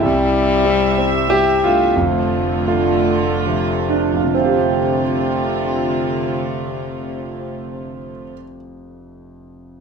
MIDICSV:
0, 0, Header, 1, 5, 480
1, 0, Start_track
1, 0, Key_signature, -1, "major"
1, 0, Tempo, 626959
1, 30, Time_signature, 3, 2, 24, 8
1, 990, Tempo, 671141
1, 1470, Tempo, 716846
1, 1950, Tempo, 788436
1, 2430, Tempo, 878477
1, 2910, Tempo, 918836
1, 5760, End_track
2, 0, Start_track
2, 0, Title_t, "Felt piano"
2, 0, Program_c, 0, 0
2, 0, Note_on_c, 0, 60, 54
2, 159, Note_off_c, 0, 60, 0
2, 1948, Note_on_c, 0, 65, 62
2, 2662, Note_on_c, 0, 62, 62
2, 2803, Note_off_c, 0, 65, 0
2, 2811, Note_on_c, 0, 65, 44
2, 2908, Note_on_c, 0, 60, 52
2, 2960, Note_on_c, 0, 67, 45
2, 3131, Note_off_c, 0, 62, 0
2, 3264, Note_off_c, 0, 65, 0
2, 3397, Note_off_c, 0, 67, 0
2, 4988, Note_off_c, 0, 60, 0
2, 5760, End_track
3, 0, Start_track
3, 0, Title_t, "Grand piano"
3, 0, Program_c, 1, 0
3, 0, Control_c, 1, 64, 127
3, 0, Note_on_c, 1, 55, 63
3, 0, Note_on_c, 1, 60, 65
3, 0, Note_on_c, 1, 64, 90
3, 23, Note_on_c, 1, 48, 67
3, 24, Note_on_c, 1, 36, 63
3, 41, Control_c, 1, 64, 0
3, 179, Control_c, 1, 64, 127
3, 482, Note_off_c, 1, 55, 0
3, 483, Note_off_c, 1, 60, 0
3, 486, Note_off_c, 1, 64, 0
3, 494, Note_on_c, 1, 55, 51
3, 494, Note_on_c, 1, 60, 45
3, 498, Note_on_c, 1, 64, 56
3, 739, Note_off_c, 1, 60, 0
3, 751, Note_on_c, 1, 60, 78
3, 970, Note_off_c, 1, 55, 0
3, 970, Note_off_c, 1, 60, 0
3, 974, Note_off_c, 1, 64, 0
3, 981, Note_on_c, 1, 55, 45
3, 982, Note_on_c, 1, 60, 45
3, 987, Note_on_c, 1, 76, 49
3, 994, Note_on_c, 1, 67, 106
3, 1236, Note_off_c, 1, 67, 0
3, 1238, Note_on_c, 1, 65, 93
3, 1250, Note_on_c, 1, 57, 62
3, 1250, Note_on_c, 1, 62, 59
3, 1439, Note_off_c, 1, 48, 0
3, 1440, Note_off_c, 1, 36, 0
3, 1452, Note_off_c, 1, 55, 0
3, 1452, Note_off_c, 1, 60, 0
3, 1454, Note_off_c, 1, 76, 0
3, 1466, Note_on_c, 1, 41, 67
3, 1469, Note_on_c, 1, 29, 64
3, 1478, Control_c, 1, 64, 0
3, 1614, Control_c, 1, 64, 127
3, 1934, Note_off_c, 1, 57, 0
3, 1938, Note_off_c, 1, 62, 0
3, 1943, Note_on_c, 1, 53, 48
3, 1944, Note_on_c, 1, 57, 45
3, 1948, Note_on_c, 1, 62, 51
3, 2413, Note_off_c, 1, 53, 0
3, 2413, Note_off_c, 1, 57, 0
3, 2415, Note_off_c, 1, 62, 0
3, 2426, Note_on_c, 1, 53, 47
3, 2427, Note_on_c, 1, 57, 41
3, 2429, Note_on_c, 1, 62, 50
3, 2647, Note_off_c, 1, 65, 0
3, 2781, Note_off_c, 1, 41, 0
3, 2790, Note_on_c, 1, 41, 52
3, 2851, Note_on_c, 1, 48, 50
3, 2888, Note_off_c, 1, 29, 0
3, 2894, Note_off_c, 1, 53, 0
3, 2895, Note_off_c, 1, 57, 0
3, 2896, Note_off_c, 1, 62, 0
3, 2910, Note_on_c, 1, 57, 46
3, 2916, Control_c, 1, 64, 0
3, 2922, Note_on_c, 1, 65, 74
3, 2963, Note_on_c, 1, 60, 51
3, 3007, Control_c, 1, 64, 127
3, 3023, Note_on_c, 1, 62, 55
3, 4875, Note_off_c, 1, 41, 0
3, 4934, Note_off_c, 1, 48, 0
3, 4989, Note_off_c, 1, 57, 0
3, 5002, Note_off_c, 1, 65, 0
3, 5043, Note_off_c, 1, 60, 0
3, 5103, Note_off_c, 1, 62, 0
3, 5760, End_track
4, 0, Start_track
4, 0, Title_t, "String section"
4, 0, Program_c, 2, 48
4, 0, Note_on_c, 2, 55, 66
4, 20, Note_on_c, 2, 76, 75
4, 23, Note_on_c, 2, 48, 78
4, 1445, Note_off_c, 2, 55, 0
4, 1453, Note_off_c, 2, 76, 0
4, 1454, Note_off_c, 2, 48, 0
4, 1468, Note_on_c, 2, 57, 70
4, 1469, Note_on_c, 2, 50, 77
4, 1470, Note_on_c, 2, 65, 80
4, 2895, Note_off_c, 2, 57, 0
4, 2897, Note_off_c, 2, 50, 0
4, 2897, Note_off_c, 2, 65, 0
4, 2901, Note_on_c, 2, 57, 64
4, 2904, Note_on_c, 2, 65, 74
4, 2905, Note_on_c, 2, 50, 74
4, 4982, Note_off_c, 2, 57, 0
4, 4984, Note_off_c, 2, 65, 0
4, 4985, Note_off_c, 2, 50, 0
4, 5760, End_track
5, 0, Start_track
5, 0, Title_t, "French horn"
5, 0, Program_c, 3, 60
5, 25, Note_on_c, 3, 55, 103
5, 1256, Note_off_c, 3, 55, 0
5, 1471, Note_on_c, 3, 53, 82
5, 1925, Note_off_c, 3, 53, 0
5, 1947, Note_on_c, 3, 50, 79
5, 2430, Note_on_c, 3, 48, 70
5, 2439, Note_off_c, 3, 50, 0
5, 2911, Note_off_c, 3, 48, 0
5, 2914, Note_on_c, 3, 48, 74
5, 4994, Note_off_c, 3, 48, 0
5, 5760, End_track
0, 0, End_of_file